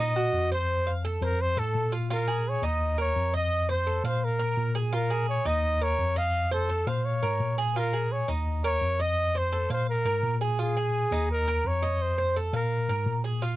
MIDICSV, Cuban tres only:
0, 0, Header, 1, 2, 480
1, 0, Start_track
1, 0, Key_signature, -5, "minor"
1, 0, Tempo, 353774
1, 931, Time_signature, 4, 2, 24, 8
1, 18404, End_track
2, 0, Start_track
2, 0, Title_t, "Cuban tres"
2, 0, Program_c, 0, 25
2, 0, Note_on_c, 0, 63, 90
2, 206, Note_off_c, 0, 63, 0
2, 216, Note_on_c, 0, 66, 79
2, 679, Note_off_c, 0, 66, 0
2, 700, Note_on_c, 0, 72, 75
2, 1161, Note_off_c, 0, 72, 0
2, 1176, Note_on_c, 0, 77, 68
2, 1406, Note_off_c, 0, 77, 0
2, 1418, Note_on_c, 0, 69, 75
2, 1647, Note_off_c, 0, 69, 0
2, 1658, Note_on_c, 0, 72, 71
2, 2119, Note_off_c, 0, 72, 0
2, 2131, Note_on_c, 0, 69, 79
2, 2595, Note_off_c, 0, 69, 0
2, 2608, Note_on_c, 0, 65, 81
2, 2841, Note_off_c, 0, 65, 0
2, 2855, Note_on_c, 0, 65, 85
2, 3084, Note_off_c, 0, 65, 0
2, 3088, Note_on_c, 0, 68, 76
2, 3553, Note_off_c, 0, 68, 0
2, 3568, Note_on_c, 0, 63, 81
2, 4033, Note_off_c, 0, 63, 0
2, 4043, Note_on_c, 0, 70, 80
2, 4510, Note_off_c, 0, 70, 0
2, 4527, Note_on_c, 0, 75, 74
2, 4991, Note_off_c, 0, 75, 0
2, 5005, Note_on_c, 0, 72, 77
2, 5238, Note_off_c, 0, 72, 0
2, 5247, Note_on_c, 0, 69, 67
2, 5479, Note_off_c, 0, 69, 0
2, 5489, Note_on_c, 0, 77, 80
2, 5953, Note_off_c, 0, 77, 0
2, 5960, Note_on_c, 0, 70, 86
2, 6428, Note_off_c, 0, 70, 0
2, 6444, Note_on_c, 0, 68, 82
2, 6677, Note_off_c, 0, 68, 0
2, 6683, Note_on_c, 0, 65, 84
2, 6916, Note_off_c, 0, 65, 0
2, 6923, Note_on_c, 0, 68, 71
2, 7389, Note_off_c, 0, 68, 0
2, 7399, Note_on_c, 0, 63, 94
2, 7867, Note_off_c, 0, 63, 0
2, 7889, Note_on_c, 0, 70, 82
2, 8352, Note_off_c, 0, 70, 0
2, 8357, Note_on_c, 0, 75, 84
2, 8825, Note_off_c, 0, 75, 0
2, 8838, Note_on_c, 0, 72, 78
2, 9073, Note_off_c, 0, 72, 0
2, 9080, Note_on_c, 0, 69, 70
2, 9314, Note_off_c, 0, 69, 0
2, 9322, Note_on_c, 0, 77, 80
2, 9788, Note_off_c, 0, 77, 0
2, 9805, Note_on_c, 0, 70, 76
2, 10269, Note_off_c, 0, 70, 0
2, 10285, Note_on_c, 0, 68, 78
2, 10517, Note_off_c, 0, 68, 0
2, 10530, Note_on_c, 0, 65, 86
2, 10759, Note_off_c, 0, 65, 0
2, 10761, Note_on_c, 0, 68, 66
2, 11228, Note_off_c, 0, 68, 0
2, 11237, Note_on_c, 0, 63, 81
2, 11706, Note_off_c, 0, 63, 0
2, 11725, Note_on_c, 0, 70, 74
2, 12190, Note_off_c, 0, 70, 0
2, 12204, Note_on_c, 0, 75, 80
2, 12670, Note_off_c, 0, 75, 0
2, 12686, Note_on_c, 0, 72, 75
2, 12918, Note_off_c, 0, 72, 0
2, 12923, Note_on_c, 0, 69, 76
2, 13156, Note_off_c, 0, 69, 0
2, 13163, Note_on_c, 0, 77, 80
2, 13630, Note_off_c, 0, 77, 0
2, 13643, Note_on_c, 0, 70, 75
2, 14110, Note_off_c, 0, 70, 0
2, 14125, Note_on_c, 0, 68, 79
2, 14358, Note_off_c, 0, 68, 0
2, 14366, Note_on_c, 0, 65, 85
2, 14599, Note_off_c, 0, 65, 0
2, 14608, Note_on_c, 0, 68, 72
2, 15074, Note_off_c, 0, 68, 0
2, 15090, Note_on_c, 0, 63, 89
2, 15555, Note_off_c, 0, 63, 0
2, 15572, Note_on_c, 0, 70, 85
2, 16037, Note_off_c, 0, 70, 0
2, 16044, Note_on_c, 0, 75, 77
2, 16513, Note_off_c, 0, 75, 0
2, 16527, Note_on_c, 0, 72, 71
2, 16762, Note_off_c, 0, 72, 0
2, 16775, Note_on_c, 0, 69, 71
2, 17006, Note_off_c, 0, 69, 0
2, 17007, Note_on_c, 0, 77, 78
2, 17476, Note_off_c, 0, 77, 0
2, 17493, Note_on_c, 0, 70, 77
2, 17959, Note_off_c, 0, 70, 0
2, 17965, Note_on_c, 0, 68, 72
2, 18202, Note_off_c, 0, 68, 0
2, 18209, Note_on_c, 0, 65, 82
2, 18404, Note_off_c, 0, 65, 0
2, 18404, End_track
0, 0, End_of_file